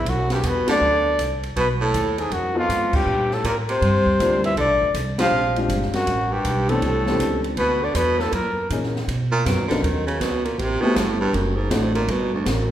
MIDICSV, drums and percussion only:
0, 0, Header, 1, 2, 480
1, 0, Start_track
1, 0, Tempo, 375940
1, 75, Time_signature, 4, 2, 24, 8
1, 16228, End_track
2, 0, Start_track
2, 0, Title_t, "Drums"
2, 77, Note_on_c, 9, 36, 21
2, 79, Note_on_c, 9, 51, 65
2, 205, Note_off_c, 9, 36, 0
2, 207, Note_off_c, 9, 51, 0
2, 380, Note_on_c, 9, 38, 60
2, 383, Note_on_c, 9, 51, 47
2, 508, Note_off_c, 9, 38, 0
2, 511, Note_off_c, 9, 51, 0
2, 554, Note_on_c, 9, 44, 53
2, 554, Note_on_c, 9, 51, 74
2, 555, Note_on_c, 9, 36, 21
2, 682, Note_off_c, 9, 44, 0
2, 682, Note_off_c, 9, 51, 0
2, 683, Note_off_c, 9, 36, 0
2, 860, Note_on_c, 9, 38, 78
2, 863, Note_on_c, 9, 51, 70
2, 988, Note_off_c, 9, 38, 0
2, 990, Note_off_c, 9, 51, 0
2, 1515, Note_on_c, 9, 36, 25
2, 1517, Note_on_c, 9, 44, 50
2, 1517, Note_on_c, 9, 51, 63
2, 1643, Note_off_c, 9, 36, 0
2, 1644, Note_off_c, 9, 44, 0
2, 1644, Note_off_c, 9, 51, 0
2, 1830, Note_on_c, 9, 51, 45
2, 1958, Note_off_c, 9, 51, 0
2, 1995, Note_on_c, 9, 36, 18
2, 1997, Note_on_c, 9, 51, 61
2, 2123, Note_off_c, 9, 36, 0
2, 2125, Note_off_c, 9, 51, 0
2, 2475, Note_on_c, 9, 36, 21
2, 2478, Note_on_c, 9, 44, 64
2, 2478, Note_on_c, 9, 51, 70
2, 2603, Note_off_c, 9, 36, 0
2, 2606, Note_off_c, 9, 44, 0
2, 2606, Note_off_c, 9, 51, 0
2, 2786, Note_on_c, 9, 51, 49
2, 2913, Note_off_c, 9, 51, 0
2, 2954, Note_on_c, 9, 36, 23
2, 2955, Note_on_c, 9, 51, 58
2, 3082, Note_off_c, 9, 36, 0
2, 3083, Note_off_c, 9, 51, 0
2, 3436, Note_on_c, 9, 36, 17
2, 3443, Note_on_c, 9, 44, 53
2, 3443, Note_on_c, 9, 51, 65
2, 3564, Note_off_c, 9, 36, 0
2, 3571, Note_off_c, 9, 44, 0
2, 3571, Note_off_c, 9, 51, 0
2, 3742, Note_on_c, 9, 49, 76
2, 3745, Note_on_c, 9, 36, 78
2, 3869, Note_off_c, 9, 49, 0
2, 3873, Note_off_c, 9, 36, 0
2, 4227, Note_on_c, 9, 38, 33
2, 4355, Note_off_c, 9, 38, 0
2, 4395, Note_on_c, 9, 36, 27
2, 4397, Note_on_c, 9, 44, 49
2, 4397, Note_on_c, 9, 51, 70
2, 4523, Note_off_c, 9, 36, 0
2, 4525, Note_off_c, 9, 44, 0
2, 4525, Note_off_c, 9, 51, 0
2, 4708, Note_on_c, 9, 51, 48
2, 4835, Note_off_c, 9, 51, 0
2, 4876, Note_on_c, 9, 36, 20
2, 4880, Note_on_c, 9, 51, 54
2, 5004, Note_off_c, 9, 36, 0
2, 5007, Note_off_c, 9, 51, 0
2, 5186, Note_on_c, 9, 36, 49
2, 5313, Note_off_c, 9, 36, 0
2, 5356, Note_on_c, 9, 36, 26
2, 5364, Note_on_c, 9, 44, 53
2, 5364, Note_on_c, 9, 51, 62
2, 5483, Note_off_c, 9, 36, 0
2, 5491, Note_off_c, 9, 44, 0
2, 5491, Note_off_c, 9, 51, 0
2, 5669, Note_on_c, 9, 51, 46
2, 5797, Note_off_c, 9, 51, 0
2, 5833, Note_on_c, 9, 36, 17
2, 5836, Note_on_c, 9, 51, 53
2, 5961, Note_off_c, 9, 36, 0
2, 5963, Note_off_c, 9, 51, 0
2, 6312, Note_on_c, 9, 36, 24
2, 6312, Note_on_c, 9, 44, 67
2, 6312, Note_on_c, 9, 51, 70
2, 6440, Note_off_c, 9, 36, 0
2, 6440, Note_off_c, 9, 44, 0
2, 6440, Note_off_c, 9, 51, 0
2, 6619, Note_on_c, 9, 38, 82
2, 6621, Note_on_c, 9, 51, 68
2, 6747, Note_off_c, 9, 38, 0
2, 6749, Note_off_c, 9, 51, 0
2, 7101, Note_on_c, 9, 51, 45
2, 7229, Note_off_c, 9, 51, 0
2, 7270, Note_on_c, 9, 36, 20
2, 7271, Note_on_c, 9, 44, 46
2, 7271, Note_on_c, 9, 51, 69
2, 7398, Note_off_c, 9, 36, 0
2, 7398, Note_off_c, 9, 44, 0
2, 7398, Note_off_c, 9, 51, 0
2, 7430, Note_on_c, 9, 38, 26
2, 7557, Note_off_c, 9, 38, 0
2, 7577, Note_on_c, 9, 51, 48
2, 7585, Note_on_c, 9, 38, 47
2, 7705, Note_off_c, 9, 51, 0
2, 7713, Note_off_c, 9, 38, 0
2, 7749, Note_on_c, 9, 51, 64
2, 7751, Note_on_c, 9, 36, 24
2, 7877, Note_off_c, 9, 51, 0
2, 7879, Note_off_c, 9, 36, 0
2, 8230, Note_on_c, 9, 44, 55
2, 8230, Note_on_c, 9, 51, 69
2, 8232, Note_on_c, 9, 36, 29
2, 8358, Note_off_c, 9, 44, 0
2, 8358, Note_off_c, 9, 51, 0
2, 8359, Note_off_c, 9, 36, 0
2, 8541, Note_on_c, 9, 51, 44
2, 8669, Note_off_c, 9, 51, 0
2, 8708, Note_on_c, 9, 51, 57
2, 8711, Note_on_c, 9, 36, 24
2, 8836, Note_off_c, 9, 51, 0
2, 8839, Note_off_c, 9, 36, 0
2, 9018, Note_on_c, 9, 38, 49
2, 9145, Note_off_c, 9, 38, 0
2, 9190, Note_on_c, 9, 36, 28
2, 9191, Note_on_c, 9, 44, 58
2, 9191, Note_on_c, 9, 51, 66
2, 9317, Note_off_c, 9, 36, 0
2, 9319, Note_off_c, 9, 44, 0
2, 9319, Note_off_c, 9, 51, 0
2, 9501, Note_on_c, 9, 51, 46
2, 9629, Note_off_c, 9, 51, 0
2, 9664, Note_on_c, 9, 51, 59
2, 9668, Note_on_c, 9, 36, 19
2, 9792, Note_off_c, 9, 51, 0
2, 9795, Note_off_c, 9, 36, 0
2, 10146, Note_on_c, 9, 44, 71
2, 10146, Note_on_c, 9, 51, 73
2, 10147, Note_on_c, 9, 36, 21
2, 10274, Note_off_c, 9, 44, 0
2, 10274, Note_off_c, 9, 51, 0
2, 10275, Note_off_c, 9, 36, 0
2, 10461, Note_on_c, 9, 38, 40
2, 10589, Note_off_c, 9, 38, 0
2, 10629, Note_on_c, 9, 36, 29
2, 10629, Note_on_c, 9, 51, 65
2, 10756, Note_off_c, 9, 36, 0
2, 10756, Note_off_c, 9, 51, 0
2, 11111, Note_on_c, 9, 36, 17
2, 11112, Note_on_c, 9, 44, 62
2, 11112, Note_on_c, 9, 51, 63
2, 11239, Note_off_c, 9, 36, 0
2, 11240, Note_off_c, 9, 44, 0
2, 11240, Note_off_c, 9, 51, 0
2, 11273, Note_on_c, 9, 38, 25
2, 11401, Note_off_c, 9, 38, 0
2, 11438, Note_on_c, 9, 38, 45
2, 11566, Note_off_c, 9, 38, 0
2, 11594, Note_on_c, 9, 36, 17
2, 11599, Note_on_c, 9, 51, 65
2, 11722, Note_off_c, 9, 36, 0
2, 11727, Note_off_c, 9, 51, 0
2, 12075, Note_on_c, 9, 36, 27
2, 12078, Note_on_c, 9, 38, 75
2, 12081, Note_on_c, 9, 44, 62
2, 12081, Note_on_c, 9, 51, 71
2, 12203, Note_off_c, 9, 36, 0
2, 12206, Note_off_c, 9, 38, 0
2, 12209, Note_off_c, 9, 44, 0
2, 12209, Note_off_c, 9, 51, 0
2, 12391, Note_on_c, 9, 38, 47
2, 12393, Note_on_c, 9, 51, 47
2, 12518, Note_off_c, 9, 38, 0
2, 12521, Note_off_c, 9, 51, 0
2, 12556, Note_on_c, 9, 36, 28
2, 12564, Note_on_c, 9, 51, 66
2, 12684, Note_off_c, 9, 36, 0
2, 12692, Note_off_c, 9, 51, 0
2, 12871, Note_on_c, 9, 51, 45
2, 12999, Note_off_c, 9, 51, 0
2, 13033, Note_on_c, 9, 38, 63
2, 13034, Note_on_c, 9, 36, 28
2, 13035, Note_on_c, 9, 44, 57
2, 13035, Note_on_c, 9, 51, 65
2, 13160, Note_off_c, 9, 38, 0
2, 13162, Note_off_c, 9, 36, 0
2, 13163, Note_off_c, 9, 44, 0
2, 13163, Note_off_c, 9, 51, 0
2, 13348, Note_on_c, 9, 51, 46
2, 13475, Note_off_c, 9, 51, 0
2, 13515, Note_on_c, 9, 36, 20
2, 13524, Note_on_c, 9, 51, 55
2, 13642, Note_off_c, 9, 36, 0
2, 13651, Note_off_c, 9, 51, 0
2, 13991, Note_on_c, 9, 36, 24
2, 13994, Note_on_c, 9, 38, 76
2, 13997, Note_on_c, 9, 44, 68
2, 13997, Note_on_c, 9, 51, 66
2, 14119, Note_off_c, 9, 36, 0
2, 14122, Note_off_c, 9, 38, 0
2, 14124, Note_off_c, 9, 44, 0
2, 14124, Note_off_c, 9, 51, 0
2, 14471, Note_on_c, 9, 36, 24
2, 14479, Note_on_c, 9, 51, 54
2, 14598, Note_off_c, 9, 36, 0
2, 14607, Note_off_c, 9, 51, 0
2, 14948, Note_on_c, 9, 36, 22
2, 14948, Note_on_c, 9, 38, 67
2, 14950, Note_on_c, 9, 44, 49
2, 14950, Note_on_c, 9, 51, 71
2, 15075, Note_off_c, 9, 38, 0
2, 15076, Note_off_c, 9, 36, 0
2, 15078, Note_off_c, 9, 44, 0
2, 15078, Note_off_c, 9, 51, 0
2, 15260, Note_on_c, 9, 51, 46
2, 15388, Note_off_c, 9, 51, 0
2, 15427, Note_on_c, 9, 36, 25
2, 15428, Note_on_c, 9, 51, 63
2, 15554, Note_off_c, 9, 36, 0
2, 15556, Note_off_c, 9, 51, 0
2, 15908, Note_on_c, 9, 36, 23
2, 15909, Note_on_c, 9, 38, 73
2, 15911, Note_on_c, 9, 44, 56
2, 15911, Note_on_c, 9, 51, 76
2, 16036, Note_off_c, 9, 36, 0
2, 16036, Note_off_c, 9, 38, 0
2, 16039, Note_off_c, 9, 44, 0
2, 16039, Note_off_c, 9, 51, 0
2, 16228, End_track
0, 0, End_of_file